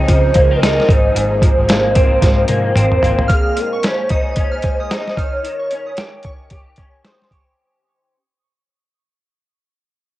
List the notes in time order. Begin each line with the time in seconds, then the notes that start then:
Already playing: C#3 F3 A#3 C4 D#4 G#4
0.08 C#3 F3, kick, closed hi-hat
0.12 C5
0.34 C#2 A#3, kick, closed hi-hat
0.51 C4
0.56 A#4
0.62 D#4, snare, closed hi-hat
0.80 snare
0.88 G#1 G#2 C3 A#3, kick, closed hi-hat
0.92 C5
1.15 G#1 G#2, closed hi-hat
1.42 F3, kick, closed hi-hat
1.58 G#1
1.68 A#3, snare, closed hi-hat
1.95 C4, kick, closed hi-hat
2.22 G#2 F3, kick, snare, closed hi-hat
2.48 G#2 A#3, closed hi-hat, high tom
2.76 G#1 C4 C5, closed hi-hat, mid tom
2.92 mid tom
3.03 G#1 A#3, closed hi-hat, floor tom
3.19 floor tom
3.28 A#2 F6, kick, closed hi-hat
3.32 G#4
3.56 G#3 A#4, closed hi-hat
3.73 C#6
3.83 C#4 C5, snare, closed hi-hat
4.09 D#4 D#6, kick, closed hi-hat
4.36 C#4 C5, kick, closed hi-hat
4.51 F6
4.62 G#3, kick, closed hi-hat
4.80 D#6
4.89 D#4 D#6, snare, closed hi-hat
5.07 snare
5.17 D#3 C#5 F6, kick, closed hi-hat
5.44 D#3, closed hi-hat
5.59 C#6
5.70 C#4, closed hi-hat
5.86 D#6
5.97 G4, snare, closed hi-hat
6.23 C#6, kick, closed hi-hat
6.50 G4, kick, closed hi-hat
6.76 C#4 C#6, kick, closed hi-hat
7.05 C5 D#6, snare, closed hi-hat
7.22 snare
7.31 G4 C#6, kick, closed hi-hat